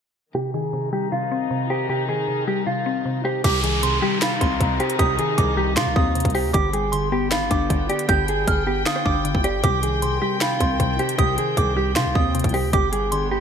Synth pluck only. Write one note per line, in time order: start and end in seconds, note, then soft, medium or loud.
0.35 0.72 C3 medium
0.54 1.51 D#3 medium
0.73 1.11 C3 medium
0.93 1.89 G3 medium
1.12 1.49 C3 medium
1.31 2.28 C4 medium
1.51 1.88 C3 medium
1.70 2.67 C5 medium
1.89 2.27 C3 medium
2.09 3.05 D#3 medium
2.28 2.65 C3 medium
2.47 3.44 G3 medium
2.67 3.04 C3 medium
2.86 3.44 C4 medium
3.05 3.43 C3 medium
3.25 3.44 C5 medium
3.44 3.82 C3 loud
3.63 4.60 D#3 medium
3.83 4.21 C3 medium
4.03 4.99 G3 loud
4.22 4.59 C3 medium
4.41 5.38 C4 medium
4.60 4.98 C3 medium
4.80 5.77 C5 medium
4.99 5.37 C3 loud
5.18 6.15 D#3 medium
5.38 5.75 C3 medium
5.57 6.54 G3 medium
5.77 6.14 C3 medium
5.96 6.54 C4 medium
6.15 6.54 C3 medium
6.35 6.54 C5 medium
6.54 6.92 D3 medium
6.73 7.70 G3 medium
6.93 7.30 D3 medium
7.12 8.09 B3 medium
7.31 7.68 D3 medium
7.51 8.47 D4 medium
7.70 8.08 D3 loud
7.89 8.86 D5 medium
8.09 8.46 D3 loud
8.47 8.85 D3 medium
8.67 9.64 B3 medium
8.86 9.23 D3 medium
9.05 9.64 D4 medium
9.25 9.64 D3 medium
9.44 9.64 D5 medium
9.63 10.01 C3 loud
9.83 10.80 D#3 medium
10.02 10.40 C3 medium
10.22 11.18 G3 loud
10.41 10.79 C3 medium
10.60 11.57 C4 medium
10.80 11.18 C3 medium
10.99 11.96 C5 medium
11.19 11.56 C3 medium
11.38 12.35 D#3 medium
11.57 11.95 C3 medium
11.77 12.73 G3 loud
11.96 12.33 C3 medium
12.15 12.73 C4 medium
12.35 12.73 C3 medium
12.54 12.73 C5 medium
12.73 13.11 D3 loud
12.93 13.40 G3 medium
13.12 13.40 D3 medium
13.31 13.40 B3 medium